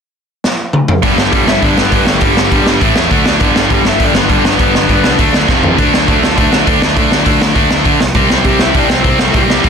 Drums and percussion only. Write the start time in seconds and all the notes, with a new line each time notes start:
0.44 snare
0.73 mid tom
0.88 floor tom
1.03 kick, open hi-hat
1.18 snare
1.33 kick, open hi-hat
1.48 snare
1.62 kick, open hi-hat
1.78 snare
1.92 kick, open hi-hat
2.06 snare
2.21 kick, open hi-hat
2.37 snare
2.52 kick, open hi-hat
2.66 snare
2.81 kick, open hi-hat
2.96 snare
3.11 kick, open hi-hat
3.26 snare
3.40 kick, open hi-hat
3.56 snare
3.70 kick, open hi-hat
3.85 snare
4.00 kick, open hi-hat
4.15 snare
4.29 kick, open hi-hat
4.45 snare
4.59 kick, open hi-hat
4.75 snare
4.89 kick, open hi-hat
5.04 snare
5.19 kick, open hi-hat
5.34 snare
5.48 kick, snare
5.63 floor tom
5.78 kick, open hi-hat
5.94 snare
6.08 kick, open hi-hat
6.23 snare
6.38 kick, open hi-hat
6.53 snare
6.67 kick, open hi-hat
6.82 snare
6.97 kick, open hi-hat
7.12 snare
7.26 kick, open hi-hat
7.42 snare
7.56 kick, open hi-hat
7.71 snare
7.85 kick, open hi-hat
8.00 snare
8.14 kick, open hi-hat
8.30 snare
8.44 kick, open hi-hat
8.59 snare
8.74 kick, open hi-hat
8.90 snare
9.04 kick, open hi-hat
9.19 snare
9.34 kick, open hi-hat
9.50 snare
9.64 kick, open hi-hat